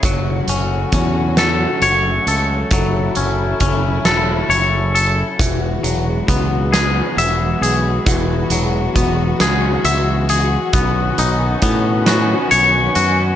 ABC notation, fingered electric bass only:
X:1
M:6/8
L:1/8
Q:3/8=45
K:F#dor
V:1 name="Fingered electric bass" clef=bass
F,,, F,,, E,,2 F,,, C,, | F,,, F,,, F,,, E,,, F,,,2 | E,,, E,,, C,,2 E,,, B,,, | E,,, E,,, E,,, C,, C,,2 |
B,,, B,,, A,,2 B,,, F,, |]